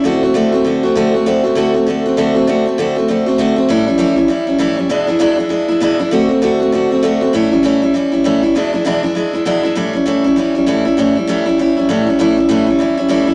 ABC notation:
X:1
M:4/4
L:1/8
Q:"Swing" 1/4=198
K:Amix
V:1 name="Steel-string acoustic guitar"
[D,A,=CF] [A,CF] [D,A,CF] [A,CF] [D,A,CF] [A,CF] [D,A,CF] [A,CF] | [D,A,=CF] [A,CF] [D,A,CF] [A,CF] [D,A,CF] [A,CF] [D,A,CF] [A,CF] | [D,A,=CF] [A,CF] [D,A,CF] [A,CF] [D,A,CF] [A,CF] [D,A,CF] [A,CF] | [A,,E,G,CE] [G,CE] [A,,E,G,CE] [G,CE] [E,G,CE] [G,CE] [A,,E,G,CE] [G,CE] |
[E,,B,,E,^G,DE] [E,G,DE] [E,,B,,E,G,DE] [E,G,DE] [E,G,DE] [E,G,DE] [E,,B,,E,G,DE] [E,G,DE] | [D,A,=CF] [A,CF] [D,A,CF] [A,CF] [D,A,CF] [A,CF] [D,A,CF] [A,CF] | [A,,E,G,CE] [G,CE] [A,,E,G,CE] [G,CE] [E,G,CE] [G,CE] [A,,E,G,CE] [G,CE] | [E,,B,,E,^G,DE] [E,G,DE] [E,,B,,E,G,DE] [E,G,DE] [E,G,DE] [E,G,DE] [E,,B,,E,G,DE] [E,G,DE] |
[A,,E,G,CE] [G,CE] [A,,E,G,CE] [G,CE] [E,G,CE] [G,CE] [A,,E,G,CE] [G,CE] | [A,,E,G,CE] [G,CE] [A,,E,G,CE] [G,CE] [E,G,CE] [G,CE] [A,,E,G,CE] [G,CE] | [A,,E,G,CE] [G,CE] [A,,E,G,CE] [G,CE] [E,G,CE] [G,CE] [A,,E,G,CE] [G,CE] |]